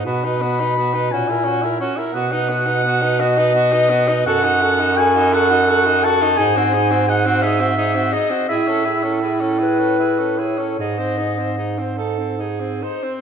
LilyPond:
<<
  \new Staff \with { instrumentName = "Clarinet" } { \time 6/8 \key b \major \tempo 4. = 56 b''4. gis''4 r8 | fis''4. dis''4. | \key gis \phrygian fis''4 gis''8 fis''4 a''8 | gis''4 fis''8 e''4 dis''8 |
e''4 r8 b'4 cis''8 | dis''4. r4 bis'8 | }
  \new Staff \with { instrumentName = "Alto saxophone" } { \time 6/8 \key b \major fis'16 b'16 fis'16 b'16 fis'16 b'16 fis'16 ais'16 fis'16 ais'16 fis'16 ais'16 | fis'16 b'16 fis'16 b'16 fis'16 b'16 fis'16 b'16 fis'16 b'16 fis'16 b'16 | \key gis \phrygian a'16 fis'16 a'16 fis'16 a'16 fis'16 a'16 fis'16 a'16 fis'16 a'16 fis'16 | gis'16 fis'16 gis'16 fis'16 gis'16 fis'16 gis'16 fis'16 gis'16 fis'16 gis'16 fis'16 |
gis'16 a'16 gis'16 a'16 gis'16 a'16 gis'16 a'16 gis'16 a'16 gis'16 a'16 | gis'16 bis'16 gis'16 bis'16 gis'16 bis'16 a'8 gis'8 bis'8 | }
  \new Staff \with { instrumentName = "Tenor saxophone" } { \time 6/8 \key b \major b16 dis'16 b16 dis'16 b16 dis'16 cis'16 e'16 cis'16 e'16 cis'16 e'16 | b16 dis'16 b16 dis'16 b16 dis'16 b16 dis'16 b16 dis'16 b16 dis'16 | \key gis \phrygian fis'16 dis'16 fis'16 dis'16 fis'16 dis'16 fis'16 dis'16 fis'16 dis'16 fis'16 dis'16 | dis'16 bis16 dis'16 bis16 dis'16 bis16 dis'16 bis16 dis'16 bis16 dis'16 bis16 |
e'16 cis'16 e'16 cis'16 e'16 cis'16 e'16 cis'16 e'16 cis'16 e'16 cis'16 | dis'16 bis16 dis'16 bis16 dis'16 bis16 dis'16 bis16 dis'16 bis16 dis'16 bis16 | }
  \new Staff \with { instrumentName = "Bass clarinet" } { \clef bass \time 6/8 \key b \major b,4. ais,4 r8 | b,2. | \key gis \phrygian fis,2. | gis,2~ gis,8 r8 |
a,2. | gis,2~ gis,8 r8 | }
>>